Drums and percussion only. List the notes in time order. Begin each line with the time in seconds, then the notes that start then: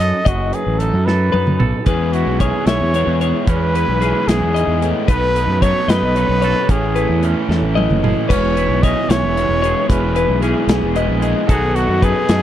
0.00 closed hi-hat
0.26 kick, closed hi-hat
0.53 closed hi-hat
0.80 closed hi-hat
1.08 snare
1.34 high tom
1.47 mid tom
1.60 mid tom
1.86 kick, closed hi-hat
2.13 closed hi-hat
2.40 kick, closed hi-hat
2.67 snare, closed hi-hat
2.94 closed hi-hat
3.21 closed hi-hat
3.47 kick, closed hi-hat
3.75 closed hi-hat
4.02 closed hi-hat
4.29 snare, closed hi-hat
4.56 closed hi-hat
4.82 closed hi-hat
5.08 kick, closed hi-hat
5.36 closed hi-hat
5.62 kick, closed hi-hat
5.89 snare, closed hi-hat
6.16 closed hi-hat
6.42 closed hi-hat
6.69 kick, closed hi-hat
6.96 closed hi-hat
7.23 closed hi-hat
7.51 snare
7.77 high tom
7.90 mid tom
8.04 mid tom
8.30 kick, closed hi-hat, crash
8.57 closed hi-hat
8.83 kick, closed hi-hat
9.10 snare, closed hi-hat
9.37 closed hi-hat
9.64 closed hi-hat
9.90 kick, closed hi-hat
10.16 closed hi-hat
10.42 closed hi-hat
10.69 snare, closed hi-hat
10.96 closed hi-hat
11.22 closed hi-hat
11.49 kick, closed hi-hat
11.76 closed hi-hat
12.03 kick, closed hi-hat
12.29 snare, closed hi-hat